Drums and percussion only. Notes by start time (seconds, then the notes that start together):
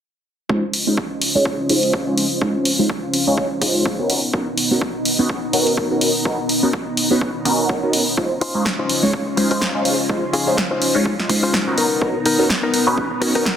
0.49 kick
0.74 open hi-hat
0.97 kick
1.22 open hi-hat
1.45 kick
1.69 open hi-hat
1.83 open hi-hat
1.93 kick
2.18 open hi-hat
2.42 kick
2.65 open hi-hat
2.90 kick
3.14 open hi-hat
3.38 kick
3.62 kick, open hi-hat
3.86 kick
4.10 open hi-hat
4.34 kick
4.58 open hi-hat
4.81 kick
5.05 open hi-hat
5.29 kick
5.53 open hi-hat
5.67 open hi-hat
5.77 kick
6.01 open hi-hat
6.25 kick
6.49 open hi-hat
6.73 kick
6.97 open hi-hat
7.21 kick
7.45 kick, open hi-hat
7.69 kick
7.93 open hi-hat
8.17 kick
8.41 open hi-hat
8.65 kick, snare
8.89 open hi-hat
9.13 kick
9.37 open hi-hat
9.51 open hi-hat
9.61 kick, snare
9.85 open hi-hat
10.09 kick
10.33 open hi-hat
10.57 kick, snare
10.82 open hi-hat
11.06 kick
11.20 snare
11.30 kick, open hi-hat
11.54 kick, snare
11.78 open hi-hat
12.02 kick
12.26 open hi-hat
12.50 kick, snare
12.74 open hi-hat
12.98 kick
13.22 open hi-hat
13.35 open hi-hat
13.46 kick, snare